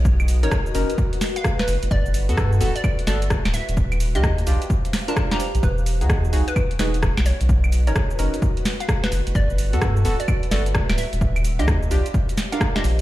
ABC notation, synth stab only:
X:1
M:4/4
L:1/16
Q:"Swing 16ths" 1/4=129
K:B
V:1 name="Synth stab"
z3 [CDA] z2 [CDA] z8 z | z3 [B,F=A]3 [B,FA] z3 [B,FA] z4 z | z3 [=D^E=G] z2 [DEG] z4 [DEA]2 [DEG] z2 | z3 [DFG]3 [DFG] z3 [DFG] z4 z |
z3 [CDA] z2 [CDA] z8 z | z3 [B,F=A]3 [B,FA] z3 [B,FA] z4 z | z3 [=D^E=G] z2 [DEG] z4 [DEA]2 [DEG] z2 |]